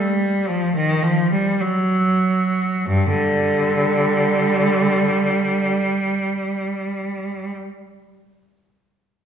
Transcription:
Already playing: G3
0.48 F3
0.76 D#3
1.03 F3
1.32 G3
1.61 F#3
2.88 G2
3.10 D3 G3

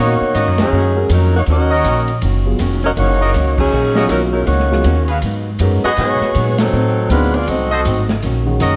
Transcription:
Already playing: A#2 B2 D#3 F#4 A#4 C#5 D#5 F5
0.00 A#3 C#4 D#4 F#4 C#5
0.21 muted upright bass stroke
0.35 G#2 D#3 A#3 C#4 F#4 A#4 C#5 D#5, hi-hat pedal, ride
0.48 F#2
0.58 D#2 F#3 C#4 D#4 G#4, snare, ride
0.72 F#2 D#3 A#3 C#4 F#4
0.96 G#3 C#4 F#4 A#4
1.09 F2 D#3 F#3 A#3 C#4 D#4 F#4 A#4, hi-hat pedal, ride
1.36 A#3 D#4 F#4 C#5
1.46 D#2 D#3 A#3 C#4 F#4, ride
1.50 F#4 A#4 D#5
1.70 F#4 A#4 C#5 D#5
1.84 A#1 D#3 A#3 C#4 F#4, hi-hat pedal, ride
2.08 ride
2.21 F#1 D#3 A#3 C#4 F#4, ride
2.45 F#3 B3 F4 G#4
2.59 F1 D#3 A#3 C#4 F#4, hi-hat pedal, ride
2.83 C#4 F#4 A#4 D#5, ride
2.97 F#1 D#3 A#3 C#4 D#4 F#4 C#5, ride
3.01 F#4
3.21 F#4 A#4 C#5 D#5
3.34 C#2 D#3 A#3 C#4 F#4, hi-hat pedal, ride
3.58 F#3 C#4 D#4 G#4, kick, crash
3.72 A#1 D#3 A#3 C#4 F#4
3.95 F#3 B3 F4 F#4 G#4 A#4 C#5 D#5, snare
4.09 B1 D#3 F#3 A#3 C#4 D#4 F#4 A#4, hi-hat pedal, ride
4.33 F#3 C#4 D#4 A#4
4.46 C#2 D#3 A#3 C#4 D#4 F#4 C#5, ride
4.59 snare
4.71 F#3 B3 F4 G#4, snare
4.84 D#2 D#3 A#3 C#4 F#4, hi-hat pedal, ride
5.08 F#4 G#4 B4 F5, ride
5.22 G#2 F#3 B3 D#4, ride
5.59 F#2 G#2 F#3 G#3 B3 C#4 D#4 F#4 A#4, hi-hat pedal, ride
5.84 B3 F#4 G#4 B4 D#5, muted upright bass stroke
5.97 G#2 B2 F#3 B3 D#4 F#4 G#4 C#5, ride
6.21 muted upright bass stroke, snare
6.34 G#2 A#2 F#3 B3 D#4, hi-hat pedal, ride
6.58 F#3 C4 D#4 A4, snare, ride
6.73 A2 F#3 C4 D#4
7.10 D2 A2 F#3 G#3 B3 C4 D4 D#4 F4 F#4 B4, hi-hat pedal, ride
7.34 B3 F4 G#4 D5, ride
7.47 C2 A2 F#3 C4 D#4 F#4 A4 D#5, ride
7.71 F#4 A4 C5 D#5
7.85 G#1 A2 F#3 C4 D#4, hi-hat pedal, ride
8.09 snare, ride
8.22 A#1 D#3 A#3 C#4 F#4, ride
8.46 D#3 G#3 C#4 F#4
8.60 F#1 D#3 A#3 C#4 F#4 A#4 C#5 D#5, hi-hat pedal, ride

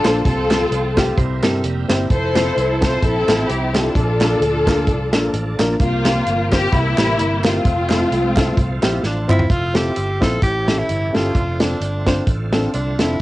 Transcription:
Already playing: F3 A3 D4 F4 A4
0.04 A#1 A#3 D4 F4 C5, snare, clap, closed hi-hat
0.25 C2 C3 F3 A3 C4 F4 G#4 A4, kick, closed hi-hat
0.31 A4
0.50 A3 C4 F4 A4, snare, clap, closed hi-hat
0.71 C2, closed hi-hat
0.96 A3 C4 F4 G4, kick, snare, clap, closed hi-hat
1.17 C2 C3 G3 C4 D#4 E4 A#4 C5, kick, closed hi-hat
1.23 E4
1.42 G2 C4 E4 G4 A4 A#4, snare, clap, closed hi-hat
1.64 F1 A#3 G4, closed hi-hat
1.88 G1 C4 E4 G4 C5, snare, clap, closed hi-hat
2.10 F1 F3 C4 E4 A4 C5, kick, closed hi-hat
2.34 C4 E4 F4 A4, snare, clap, closed hi-hat
2.57 C2, closed hi-hat
2.81 C4 E4 F4 A4 C5, kick, snare, clap, closed hi-hat
3.03 A#1 C4 E4 A4, kick, closed hi-hat
3.27 A1 C4 E4 F4 A4, snare, clap, closed hi-hat
3.49 C2 G4, closed hi-hat
3.73 C4 D4 E4 F4 G4 A4, snare, clap, closed hi-hat
3.95 A#1 A#2 F3 A#3 D4 A4, kick, closed hi-hat
4.20 A#3 D4 F4 A4, snare, clap, closed hi-hat
4.40 D2, closed hi-hat
4.66 A#3 D4 F4 A#4, kick, snare, clap, closed hi-hat
4.87 C2, kick, closed hi-hat
5.13 A#1 A#3 D4 F4 A4, snare, clap, closed hi-hat
5.33 A1, closed hi-hat
5.59 A#1 A#3 D4 F4 A#4, snare, clap, closed hi-hat
5.80 C2 C3 F3 A#3 C4 F4 G4, kick, closed hi-hat
6.05 C4 F4 G4 A#4, snare, clap, closed hi-hat
6.26 G1, closed hi-hat
6.52 C4 F4 G4 C5, kick, snare, clap, closed hi-hat
6.72 C2 C3 E3 G3 A#3 C4 E4 G4, kick, closed hi-hat
6.98 A1 C4 E4 G4 A#4, snare, clap, closed hi-hat
7.19 G1, closed hi-hat
7.44 A3 C4 E4 F4 G4 A#4, snare, clap, closed hi-hat
7.65 F1 F3 A3 C4 F4, kick, closed hi-hat
7.89 C4 E4 F4 A4, snare, clap, closed hi-hat
8.11 C2, closed hi-hat
8.36 C4 E4 F4 A4, kick, snare, clap, closed hi-hat
8.57 C2, kick, closed hi-hat
8.82 A#1 C4 E4 F4 G4, snare, clap, closed hi-hat
9.03 A1 D4, snare
9.28 G1 C4 E4 F4 C5, clap, mid tom
9.39 floor tom
9.50 F1 A3 C4 E4 F4, kick, closed hi-hat
9.74 C4 E4 F4 G4 A4, snare, closed hi-hat
9.96 G1, closed hi-hat
10.20 A#1 C4 E4 F4 A4 C5, kick, snare, closed hi-hat
10.42 A1 A2 E3 A3 C#4 F#4 G4, kick, closed hi-hat
10.49 G4
10.67 C#4 E4 G4 A4, snare, closed hi-hat
10.79 E4
10.89 G1, closed hi-hat
11.12 G1 C#4 E4 F4 G4 A4, snare, closed hi-hat
11.35 F1 D3 A3 C4 E4, kick, closed hi-hat
11.41 F4
11.59 C4 D4 F4 A4, snare, closed hi-hat
11.80 G1, closed hi-hat
12.06 C4 D4 F4 C5, kick, snare, closed hi-hat
12.27 A1, kick, closed hi-hat
12.52 C4 D4 F4 A4, snare, closed hi-hat
12.74 C2 D4, closed hi-hat
12.99 F1 C4 D4 E4 F4 A4, snare, closed hi-hat

